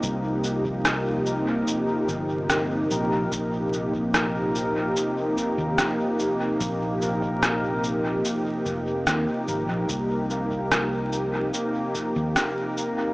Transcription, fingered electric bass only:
X:1
M:4/4
L:1/16
Q:1/4=73
K:Cm
V:1 name="Fingered electric bass" clef=bass
C,,8 z2 G,,,4 B,,,2 | B,,,8 z3 E,, z4 | B,,,8 z2 F,,,2 E,, z A,,, B,,, | C,,8 z3 E,, z4 |]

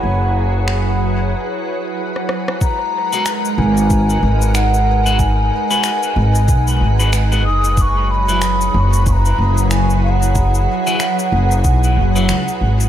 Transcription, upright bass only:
X:1
M:4/4
L:1/8
Q:"Swing 16ths" 1/4=93
K:G#m
V:1 name="Upright bass" clef=bass
F,,,4 z4 | z3 G,,,2 G,,,3- | G,,, z2 G,,, B,,, G,,,2 F,,,- | F,,,3 F,,,2 F,,,3- |
F,,, z2 F,,, B,,, F,,, C,, G,,, |]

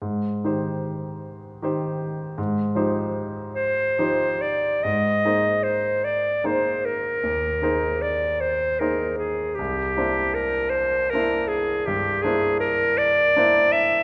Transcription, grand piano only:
X:1
M:12/8
L:1/8
Q:3/8=51
K:Ablyd
V:1 name="Grand piano"
A,, [E,EGc]3 [E,EGc]2 A,, [F,EGc]3 [F,EGc]2 | A,, [B,EAc]3 [B,EAc]2 E,, [B,EAc]3 [B,EAc]2 | C,, [B,D=Ec]3 [B,DEc]2 G,, [B,DEc]3 [B,DEc]2 |]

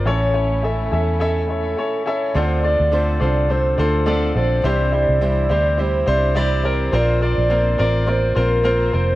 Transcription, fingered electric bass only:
X:1
M:4/4
L:1/16
Q:"Swing 16ths" 1/4=105
K:Dm
V:1 name="Fingered electric bass" clef=bass
A,,,6 E,,6 z4 | D,,3 D,,3 C,,4 D,,4 B,,,2 | C,,3 C,,3 D,,4 C,,6 | B,,,3 B,,,3 A,,,4 B,,,4 F,,,2 |]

